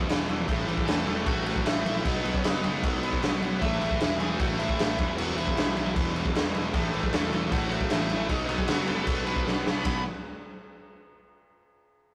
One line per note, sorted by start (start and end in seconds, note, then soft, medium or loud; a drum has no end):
0.08 0.26 E1 medium
0.08 0.26 E2 loud
0.08 0.27 B2 medium
0.08 0.27 E3 loud
0.08 snare loud
0.08 crash medium
0.28 0.45 E1 medium
0.28 0.46 E2 medium
0.28 0.46 B2 loud
0.28 0.46 E3 loud
0.28 crash medium
0.47 0.65 A1 loud
0.47 0.65 A2 loud
0.47 0.66 E3 loud
0.47 0.67 A3 loud
0.47 kick loud
0.47 crash medium
0.67 0.84 A1 medium
0.67 0.86 A2 medium
0.67 0.86 E3 medium
0.67 0.87 A3 medium
0.67 crash medium
0.77 kick medium
0.85 1.05 E1 loud
0.85 1.05 A2 medium
0.85 1.06 E3 medium
0.85 1.06 A3 loud
0.85 1.23 A4 medium
0.85 1.27 A5 loud
0.85 snare loud
0.85 crash medium
1.07 1.24 E1 loud
1.07 1.26 A2 loud
1.07 1.26 E3 loud
1.07 1.27 A3 loud
1.07 crash medium
1.26 1.60 A1 medium
1.26 1.45 A2 medium
1.26 1.46 E3 medium
1.26 1.47 A3 loud
1.26 1.63 F#4 medium
1.26 1.65 F#5 loud
1.26 kick loud
1.26 crash medium
1.46 1.64 A2 loud
1.46 1.65 E3 loud
1.46 1.65 A3 loud
1.46 crash medium
1.56 kick medium
1.66 1.82 A1 loud
1.66 1.84 A2 medium
1.66 1.85 E3 medium
1.66 1.85 A3 loud
1.66 2.02 E4 medium
1.66 2.06 E5 loud
1.66 snare loud
1.66 crash medium
1.85 2.02 A#1 medium
1.85 2.04 A2 loud
1.85 2.04 E3 loud
1.85 2.04 A3 loud
1.85 crash medium
2.05 2.22 B1 loud
2.05 2.23 B2 loud
2.05 2.23 F#3 medium
2.05 2.24 B3 loud
2.05 2.30 D#4 medium
2.05 2.33 D#5 medium
2.05 kick loud
2.05 crash medium
2.24 2.41 B1 medium
2.24 2.43 B2 medium
2.24 2.43 F#3 medium
2.24 2.44 B3 medium
2.24 crash medium
2.33 2.44 C#4 medium
2.33 2.45 C#5 medium
2.33 kick medium
2.44 2.61 F#1 loud
2.44 2.62 B2 medium
2.44 2.63 F#3 medium
2.44 2.64 B3 medium
2.44 3.38 D#4 medium
2.44 3.38 D#5 medium
2.44 snare loud
2.44 crash medium
2.63 2.81 F#1 medium
2.63 2.82 B2 loud
2.63 2.82 F#3 loud
2.63 2.82 B3 loud
2.63 crash medium
2.83 3.17 B1 medium
2.83 3.02 B2 medium
2.83 3.02 F#3 medium
2.83 3.02 B3 loud
2.83 kick loud
2.83 crash medium
3.03 3.21 B2 medium
3.03 3.21 F#3 loud
3.03 3.22 B3 loud
3.03 crash medium
3.13 kick medium
3.22 3.39 B1 loud
3.22 3.41 B2 medium
3.22 3.42 F#3 medium
3.22 3.42 B3 loud
3.22 snare loud
3.22 crash medium
3.42 3.59 B1 medium
3.42 3.60 B2 medium
3.42 3.60 F#3 loud
3.42 3.61 B3 loud
3.42 crash medium
3.61 3.78 A1 loud
3.61 3.79 A2 loud
3.61 3.81 E3 loud
3.61 3.80 A3 loud
3.61 4.16 E4 medium
3.61 4.22 E5 loud
3.61 kick loud
3.61 crash medium
3.80 3.98 A1 medium
3.80 3.98 A2 medium
3.80 3.99 E3 medium
3.80 3.99 A3 medium
3.80 crash medium
3.91 kick loud
3.99 4.18 E1 loud
3.99 4.19 A2 medium
3.99 4.20 E3 medium
3.99 4.20 A3 medium
3.99 snare loud
3.99 crash medium
4.19 4.37 E1 loud
4.19 4.39 A2 loud
4.19 4.40 E3 medium
4.19 4.40 A3 loud
4.19 4.38 G#4 medium
4.19 4.40 G#5 loud
4.19 crash medium
4.39 4.73 A1 loud
4.39 4.59 A2 medium
4.39 4.60 E3 medium
4.39 4.59 A3 loud
4.39 4.57 F#4 medium
4.39 4.57 F#5 medium
4.39 kick loud
4.39 crash medium
4.57 4.78 A2 loud
4.57 4.80 E3 loud
4.57 4.79 A3 loud
4.57 5.13 E4 medium
4.57 5.17 E5 loud
4.57 crash medium
4.69 kick loud
4.79 4.99 A1 loud
4.79 4.97 A2 medium
4.79 4.99 E3 loud
4.79 4.98 A3 loud
4.79 snare loud
4.79 crash medium
4.99 5.15 E1 medium
4.99 5.18 E2 medium
4.99 5.18 B2 loud
4.99 5.19 E3 loud
4.99 kick loud
4.99 crash medium
5.17 5.34 E1 loud
5.17 5.37 E2 medium
5.17 5.37 B2 loud
5.17 5.39 E3 loud
5.17 5.35 F#4 medium
5.17 5.36 F#5 medium
5.17 crash medium
5.36 5.54 E1 medium
5.36 5.56 E2 medium
5.36 5.57 B2 medium
5.36 5.58 E3 medium
5.36 5.91 E4 medium
5.36 5.95 E5 medium
5.36 crash medium
5.47 kick medium
5.57 5.74 B1 loud
5.57 5.76 E2 medium
5.57 5.77 B2 medium
5.57 5.78 E3 loud
5.57 snare loud
5.57 crash medium
5.76 5.93 B1 loud
5.76 5.96 E2 loud
5.76 5.97 B2 loud
5.76 5.98 E3 loud
5.76 crash medium
5.96 6.30 E1 medium
5.96 6.15 E2 medium
5.96 6.16 B2 medium
5.96 6.16 E3 loud
5.96 kick loud
5.96 crash medium
6.16 6.34 E2 loud
6.16 6.35 B2 loud
6.16 6.35 E3 loud
6.16 crash medium
6.25 kick medium
6.35 6.52 E1 loud
6.35 6.53 E2 medium
6.35 6.54 B2 loud
6.35 6.54 E3 loud
6.35 snare loud
6.35 crash medium
6.54 6.74 E1 medium
6.54 6.72 E2 medium
6.54 6.73 B2 loud
6.54 6.73 E3 medium
6.54 crash medium
6.73 6.90 A1 loud
6.73 6.91 A2 loud
6.73 6.92 E3 loud
6.73 6.92 A3 loud
6.73 kick loud
6.73 crash medium
6.93 7.10 A1 medium
6.93 7.11 A2 medium
6.93 7.11 E3 medium
6.93 7.12 A3 loud
6.93 crash medium
7.03 kick medium
7.12 7.30 E1 loud
7.12 7.30 A2 medium
7.12 7.30 E3 medium
7.12 7.31 A3 loud
7.12 7.49 A4 medium
7.12 7.49 A5 medium
7.12 snare loud
7.12 crash medium
7.31 7.49 E1 loud
7.31 7.50 A2 loud
7.31 7.50 E3 loud
7.31 7.50 A3 loud
7.31 crash medium
7.51 7.85 A1 loud
7.51 7.69 A2 loud
7.51 7.71 E3 medium
7.51 7.71 A3 loud
7.51 7.88 F#4 medium
7.51 7.91 F#5 medium
7.51 kick loud
7.51 crash medium
7.71 7.89 A2 loud
7.71 7.89 E3 loud
7.71 7.90 A3 loud
7.71 crash medium
7.81 kick medium
7.90 8.07 A1 medium
7.90 8.09 A2 medium
7.90 8.10 E3 medium
7.90 8.10 A3 loud
7.90 8.27 E4 medium
7.90 8.30 E5 loud
7.90 snare loud
7.90 crash medium
8.09 8.27 A1 loud
8.09 8.28 A2 medium
8.09 8.29 E3 loud
8.09 8.29 A3 loud
8.09 crash medium
8.29 8.46 B1 loud
8.29 8.48 B2 loud
8.29 8.49 F#3 loud
8.29 8.49 B3 loud
8.29 8.47 D#4 medium
8.29 8.45 D#5 medium
8.29 kick loud
8.29 crash medium
8.46 8.66 B1 medium
8.46 8.68 B2 medium
8.46 8.68 F#3 medium
8.46 8.68 B3 medium
8.46 8.67 D#4 medium
8.46 8.68 D#5 medium
8.46 crash medium
8.59 kick medium
8.67 8.85 F#1 loud
8.67 8.86 B2 medium
8.67 8.87 F#3 medium
8.67 8.87 B3 medium
8.67 8.86 F#4 medium
8.67 8.87 F#5 medium
8.67 snare loud
8.67 crash loud
8.87 9.05 F#1 loud
8.87 9.05 B2 medium
8.87 9.06 F#3 loud
8.87 9.07 B3 loud
8.87 9.24 A4 medium
8.87 9.25 A5 medium
8.87 crash medium
9.06 9.41 B1 medium
9.06 9.25 B2 medium
9.06 9.25 F#3 medium
9.06 9.26 B3 medium
9.06 kick loud
9.06 crash medium
9.25 9.44 B2 loud
9.25 9.45 F#3 loud
9.25 9.45 B3 loud
9.25 9.63 B4 medium
9.25 9.62 B5 medium
9.25 crash medium
9.36 kick medium
9.46 9.63 B1 loud
9.46 9.65 B2 medium
9.46 9.66 F#3 loud
9.46 9.66 B3 loud
9.46 snare medium
9.66 9.83 B1 loud
9.66 9.83 B2 medium
9.66 9.84 F#3 medium
9.66 9.85 B3 loud
9.66 snare loud
9.83 10.03 B1 medium
9.83 10.01 B2 medium
9.83 10.01 F#3 loud
9.83 10.02 B3 loud
9.83 10.02 B5 medium
9.83 kick loud
9.83 ride bell medium